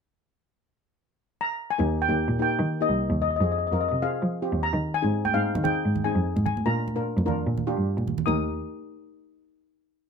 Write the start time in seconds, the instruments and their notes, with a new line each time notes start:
1.41 steel pan A#5
1.71 steel pan G#5
1.78 cello D#2, steel pan A#3 D#4 G4
2.02 steel pan G5
2.09 cello D#2, steel pan A#3 D#4 G4
2.28 cello A#2
2.39 steel pan A#3 D#4 G4 G5
2.59 cello D#3
2.81 steel pan A#3 D#4 G4 D#5
2.89 cello C2
3.10 cello D#2
3.22 steel pan D#5
3.31 steel pan D#5
3.36 steel pan D#5
3.41 cello F2, steel pan C4 F4 G#4 D#5
3.52 steel pan D#5
3.58 steel pan D#5
3.67 steel pan D#5
3.72 cello F2, steel pan C4 F4 A#4 D#5
3.81 steel pan D#5
3.88 cello C3, steel pan D#5
4.02 steel pan C4 F4 G#4 F5
4.22 cello F3
4.42 steel pan C4 F4 G4
4.52 cello D#2
4.63 steel pan A#5
4.73 cello D#3
4.94 steel pan G#5
5.02 cello G#2, steel pan C4 D#4 G#4
5.25 steel pan G5, high conga
5.34 cello G#2, steel pan C4 D#4 G#4 F5
5.55 cello D#3, high conga
5.63 steel pan C4 D#4 G#4 G5, low conga
5.85 cello G#2
5.96 high conga, low conga
6.04 steel pan C4 D#4 G#4 G#5
6.15 cello F2
6.36 cello G#2, high conga
6.46 steel pan G#5, low conga
6.57 high conga
6.66 cello A#2, steel pan D4 F4 A#4 A#5
6.88 high conga
6.96 cello A#2, steel pan D4 F4 A#4
7.17 cello F2, high conga
7.26 steel pan D4 F4 A#4, low conga
7.47 cello A#2
7.58 high conga, low conga
7.67 steel pan D4 F4 G4
7.77 cello G2
7.97 cello A#2, high conga
8.08 low conga
8.18 low conga
8.26 cello D#2, steel pan D#4 G4 A#4 D#6, high conga